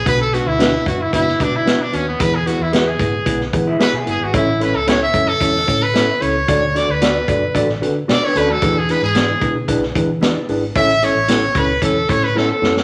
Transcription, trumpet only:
\new Staff \with { instrumentName = "Trumpet" } { \time 4/4 \key a \major \tempo 4 = 112 b'16 a'16 fis'16 e'8. fis'16 e'16 e'8 d'16 e'8 d'16 cis'16 b16 | b'16 gis'16 fis'16 e'16 fis'16 gis'4 r8. b'8 gis'16 fis'16 | e'8 b'16 a'16 cis''16 e''8 a'4 b'8. cis''8~ | cis''8 d''16 b'4. r8. d''16 cis''16 b'16 a'16~ |
a'16 gis'16 b'16 gis'4 r2 r16 | e''8 cis''4 b'8 a'8 cis''16 b'16 a'16 a'8 r16 | }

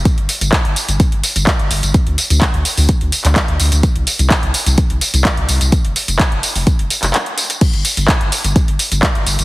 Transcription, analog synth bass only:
\new Staff \with { instrumentName = "Analog synth bass" } { \clef bass \time 4/4 \key c \dorian \tempo 4 = 127 r16 g,,16 r16 g,,16 r16 g,,16 r16 g,,16 r16 g,,16 r16 g,,16 r16 g,,16 g,,16 g,,16 | r16 d,16 r16 d,16 r16 d,16 r16 d,16 r16 d,16 r16 d,16 r16 d,16 d,16 d,16 | r16 c,16 r16 c,16 r16 c,16 r16 c,16 r16 c,16 r16 c,16 r16 c,16 c,16 c,16 | r16 f,,16 r16 f,,16 r16 f,,16 r16 f,,16 r16 f,,16 r16 f,,16 r4 |
r16 g,,16 r16 g,,16 r16 g,,16 r16 g,,16 r16 g,,16 r16 g,,16 r16 g,,16 g,,16 g,,16 | }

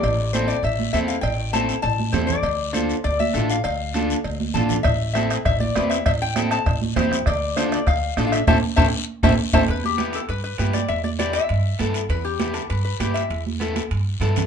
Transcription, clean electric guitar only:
\new Staff \with { instrumentName = "Clean electric guitar" } { \time 4/4 \key a \minor \tempo 4 = 199 r4 <c' e' a'>8 r4. <c' e' a'>8 r8 | r4 <c' e' a'>8 r4. <c' e' a'>8 r8 | r4 <d' f' a'>8 r4. <d' f' a'>8 r8 | r4 <d' f' a'>8 r4. <d' f' a'>8 r8 |
r4 <c' e' a'>8 r4. <c' e' b'>8 r8 | r4 <c' e' a'>8 r4. <c' e' g'>8 r8 | r4 <d' f' a'>8 r4. <d' f' a'>8 r8 | <c' e' a'>8 r8 <c' e' a'>8 r4 <c' e' a'>8 r8 <c' e' a'>8 |
r4 <b e' g'>8 r4. <b e' g'>8 r8 | r4 <b e' g'>8 r4. <b e' a'>8 r8 | r4 <b e' g'>8 r4. <b e' g'>8 r8 | r4 <b e' a'>8 r4. <b e' a'>8 r8 | }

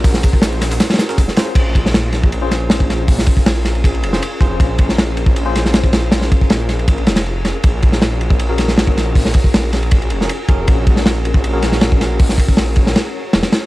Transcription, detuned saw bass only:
\new Staff \with { instrumentName = "Detuned saw bass" } { \clef bass \time 4/4 \key bes \minor \tempo 4 = 158 bes,,8 r8 bes,,4 r4 f,,8 r8 | bes,,4 bes,,4. bes,,4.~ | bes,,8 r8 bes,,4 bes,,8 f,,8 r8 f,,8 | bes,,4 bes,,4. bes,,4.~ |
bes,,8 r8 bes,,4 bes,,8 f,,4 f,,8 | bes,,4 bes,,4. bes,,4.~ | bes,,8 r8 bes,,4 bes,,8 f,,8 r8 f,,8 | bes,,4 bes,,4. bes,,4.~ |
bes,,8 r8 bes,,4 r4 f,,8 r8 | }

